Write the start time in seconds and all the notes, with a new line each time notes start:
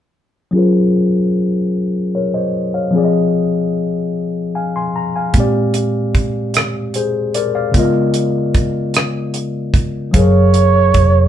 0.51 F#3 C#4 F4
0.55 G#4 A#4 C5
2.15 A#4 C#5
2.34 C5 D#5
2.74 C#5 F5
2.91 F3 C4
2.96 G#4 D5
3.05 D#5
4.55 F5 G#5
4.76 G#5 C6
4.96 A#5
5.16 F5 G#5
5.33 A#2 G#3 C4, kick, closed hi-hat
5.38 G4 D5
5.74 closed hi-hat
6.15 kick, closed hi-hat
6.54 cross-stick, closed hi-hat
6.94 G#4 C5, closed hi-hat
7.34 A#4 D5, closed hi-hat
7.55 D5 F5
7.72 C#3 G#3 B3, kick, closed hi-hat
7.76 F4 A#4 D#5
8.14 closed hi-hat
8.54 kick, closed hi-hat
8.94 cross-stick, closed hi-hat
9.34 closed hi-hat
9.74 kick, closed hi-hat
10.11 F#1 F#3 G#4 C#5 F5, kick, closed hi-hat
10.17 A#4 C#5
10.54 closed hi-hat
10.94 F1, kick, closed hi-hat